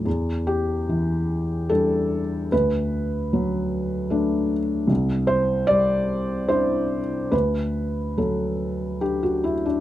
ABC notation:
X:1
M:3/4
L:1/16
Q:1/4=74
K:Em
V:1 name="Felt piano"
z2 G6 A4 | B8- B2 z2 | z2 c2 d4 c4 | B4 A4 G F E D |]
V:2 name="Felt piano" clef=bass
E,,4 E,4 [G,D]4 | D,,4 F,4 [A,D]4 | C,,4 G,4 [DE]4 | D,,4 F,4 D4 |]